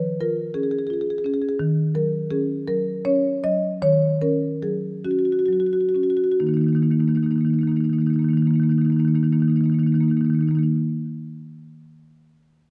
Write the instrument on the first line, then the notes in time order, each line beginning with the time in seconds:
marimba
Already playing: D#3 F3 B4
0.21 F4 A#4
0.54 C#4 G#4
0.63 G#4
0.71 G#4
0.79 G#4
0.87 F4 G#4
0.94 G#4
1.01 G#4
1.10 G#4
1.18 G#4
1.25 C#4 G#4
1.34 G#4
1.42 G#4
1.49 G#4
1.59 D#3
1.95 F#3 A#4
2.31 C#4 G#4
2.68 F#3 A#4
3.05 C#4 C#5
3.44 F#3 D#5
3.82 D#3 C#5
4.22 C#4 A#4
4.62 F#3 G#4
5.05 C#4 F#4
5.11 F#4
5.19 F#4
5.25 F#4
5.32 F#4
5.39 F#4
5.46 F#3 F#4
5.53 F#4
5.60 F#4
5.67 F#4
5.73 F#4
5.81 F#4
5.89 F#4
5.95 C#4 F#4
6.03 F#4
6.10 F#4
6.17 F#4
6.24 F#4
6.32 F#4
6.40 D#3 A#3 D#4
6.47 D#3 A#3 D#4
6.54 D#3 A#3 D#4
6.61 A#3 D#4
6.66 D#3 D#4
6.73 D#3 A#3 D#4
6.82 D#3 A#3 D#4
6.91 D#3 A#3 D#4
6.99 D#3 A#3 D#4
7.08 D#3 A#3 D#4
7.15 D#3 A#3 D#4
7.23 D#3 A#3 D#4
7.31 A#3 D#4
7.36 D#3 D#4
7.41 D#3 A#3
7.46 A#3 D#4
7.53 D#3 D#4
7.59 A#3 D#4
7.63 D#3
7.68 A#3 D#4
7.72 D#3
7.76 A#3 D#4
7.81 D#3 D#4
7.85 A#3
7.90 D#3 A#3 D#4
7.98 D#3 A#3 D#4
8.06 D#3 A#3 D#4
8.14 D#3 D#4
8.19 A#3 D#4
8.25 D#3 A#3
8.30 D#3 D#4
8.37 A#3 D#4
8.42 D#3 D#4
8.47 D#3 A#3
8.54 A#3 D#4
8.60 D#3 A#3 D#4
8.69 D#3 A#3 D#4
8.78 D#3 A#3 D#4
8.85 D#3 D#4
8.90 A#3 D#4
8.96 D#3 A#3 D#4
9.05 D#3 A#3 D#4
9.14 D#3 A#3 D#4
9.23 D#3 A#3 D#4
9.32 D#3 A#3 D#4
9.40 D#3 A#3 D#4
9.48 D#3 A#3 D#4
9.56 A#3 D#4
9.61 D#3 D#4
9.66 A#3
9.70 D#3 D#4
9.74 A#3
9.79 D#3 D#4
9.83 D#3 A#3
9.87 D#4
9.92 D#3 A#3 D#4
10.01 D#3 A#3 D#4
10.08 D#3 A#3 D#4
10.17 A#3 D#4
10.21 D#3 D#4
10.26 D#3 A#3
10.33 A#3 D#4
10.39 D#3 A#3 D#4
10.48 D#3 A#3 D#4
10.55 D#3 A#3 D#4
10.63 D#4